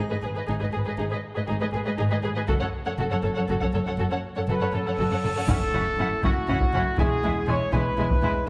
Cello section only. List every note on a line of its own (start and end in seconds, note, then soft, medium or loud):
0.12 0.17 G#2 soft
0.24 0.29 G#2 soft
0.36 0.41 G#2 soft
0.48 0.53 G#2 soft
0.61 0.66 G#2 soft
0.74 0.79 G#2 soft
0.87 0.92 G#2 soft
1.00 1.05 G#2 soft
1.13 1.17 G#2 soft
1.37 1.42 G#2 soft
1.50 1.55 G#2 soft
1.63 1.67 G#2 soft
1.75 1.79 G#2 soft
1.87 1.92 G#2 soft
2.00 2.04 G#2 soft
2.11 2.16 G#2 soft
2.24 2.29 G#2 soft
2.36 2.41 G#2 soft
2.49 2.54 F#2 soft
2.62 2.66 F#2 soft
2.86 2.91 F#2 soft
2.99 3.04 F#2 soft
3.12 3.17 F#2 soft
3.24 3.29 F#2 soft
3.37 3.42 F#2 soft
3.49 3.54 F#2 medium
3.62 3.67 F#2 soft
3.74 3.79 F#2 soft
3.86 3.91 F#2 soft
3.99 4.04 F#2 soft
4.12 4.17 F#2 soft
4.37 4.41 F#2 soft
4.49 4.54 F#2 soft
4.62 4.67 F#2 soft
4.74 4.79 F#2 soft
4.87 4.92 F#2 soft
4.99 5.04 F#2 soft
5.12 5.17 F#2 soft
5.25 5.29 F#2 soft
5.37 5.42 F#2 soft
5.50 5.58 F#2 soft
5.74 5.82 F#2 soft
5.98 6.06 F#2 soft
6.24 6.32 F#2 soft
6.49 6.57 F#2 soft
6.74 6.82 F#2 soft
6.99 7.07 E2 soft
7.24 7.32 E2 soft
7.49 7.57 E2 soft
7.73 7.81 E2 soft
7.99 8.07 E2 soft
8.23 8.31 E2 soft